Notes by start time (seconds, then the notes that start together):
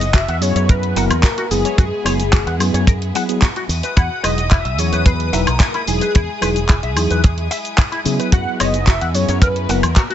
Already playing: F#1 G#3 B3 E4 F#4 D#5
0.01 closed hi-hat, cabasa
0.14 F#4 E5, kick, clap, closed hi-hat, cabasa
0.28 E2 F#5, closed hi-hat
0.41 F#2 F#3 B3 E4 G#4 C#5, open hi-hat, cabasa
0.55 F#2 C#5, closed hi-hat, cabasa
0.69 A#4 B4, kick, closed hi-hat, cabasa
0.83 closed hi-hat
0.96 F#1 F#3 B3 E4 A#4 F#5, open hi-hat, cabasa
1.10 E2, closed hi-hat, cabasa, high woodblock
1.23 F#4, kick, clap, closed hi-hat, cabasa
1.38 F#4, closed hi-hat
1.50 F#1 F#3 B3 E4 G#4, open hi-hat, cabasa
1.65 C#5, closed hi-hat, cabasa
1.78 F#2 F#4 G#4, kick, closed hi-hat, cabasa
2.05 F#1 F#3 B3 E4 G#4 C#5, open hi-hat, cabasa, high woodblock
2.20 closed hi-hat, cabasa
2.33 F#4, kick, clap, closed hi-hat, cabasa
2.46 E2 F#5, closed hi-hat
2.59 F#2 F#3 B3 E4 G#4, open hi-hat, cabasa, high woodblock
2.74 F#2 C#5, closed hi-hat, cabasa
2.87 A#4, kick, closed hi-hat, cabasa
3.02 closed hi-hat
3.14 F#3 B3 E4 G#4 F#5, open hi-hat, cabasa
3.28 F#3 B3 E4 G#4, closed hi-hat, cabasa
3.42 F#4, kick, clap, closed hi-hat, cabasa
3.56 F#4, closed hi-hat
3.69 E2 G#3 E4 F#4 D#6, open hi-hat, cabasa
3.83 B4, closed hi-hat, cabasa
3.97 E2 E4 F#5, kick, closed hi-hat, cabasa
4.23 E1 F#3 D#4 E4 G#4 B4 D#5, open hi-hat, cabasa, high woodblock
4.38 closed hi-hat, cabasa
4.51 E4 E5, kick, clap, closed hi-hat, cabasa
4.65 B1 E5, closed hi-hat
4.78 E2 F#3 E4 G#4 C#5, open hi-hat, cabasa
4.92 E2 B4, closed hi-hat, cabasa
5.06 G#4 B4, kick, closed hi-hat, cabasa
5.20 closed hi-hat
5.32 E1 F#3 D#4 E4 A#4 B4 E5, open hi-hat, cabasa
5.47 B1, closed hi-hat, cabasa, high woodblock
5.60 E4, kick, clap, closed hi-hat, cabasa
5.74 E4, closed hi-hat
5.87 E1 F#3 D#4 E4 G#4, open hi-hat, cabasa
6.01 B4, closed hi-hat, cabasa
6.15 E2 E4, kick, closed hi-hat, cabasa
6.41 E1 F#3 D#4 E4 G#4 B4, open hi-hat, cabasa, high woodblock
6.56 closed hi-hat, cabasa
6.69 E4, kick, clap, closed hi-hat, cabasa
6.83 B1 E5, closed hi-hat
6.96 E2 F#3 D#4 E4 G#4, open hi-hat, cabasa, high woodblock
7.10 E2 B4, closed hi-hat, cabasa
7.24 G#4, kick, closed hi-hat, cabasa
7.38 closed hi-hat
7.51 E5, open hi-hat, cabasa
7.65 closed hi-hat, cabasa
7.78 E4, kick, clap, closed hi-hat, cabasa
7.92 E4, closed hi-hat
8.05 C#3 F#3 B3 E4 G#4, open hi-hat, cabasa
8.19 B4, closed hi-hat, cabasa
8.32 F#2 B3 F#4 F#5, kick, closed hi-hat, cabasa
8.60 F#1 F#3 B3 E4 G#4 C#5 D#5, open hi-hat, cabasa, high woodblock
8.74 closed hi-hat, cabasa
8.87 F#4 E5, kick, clap, closed hi-hat, cabasa
9.01 E2 F#5, closed hi-hat
9.14 F#2 F#3 B3 E4 G#4 C#5, open hi-hat, cabasa
9.28 F#2 C#5, closed hi-hat, cabasa
9.42 A#4 B4, kick, closed hi-hat, cabasa
9.56 closed hi-hat
9.68 F#1 F#3 B3 E4 A#4 F#5, open hi-hat, cabasa
9.82 E2, closed hi-hat, cabasa, high woodblock
9.96 F#4, kick, clap, closed hi-hat, cabasa
10.10 F#4, closed hi-hat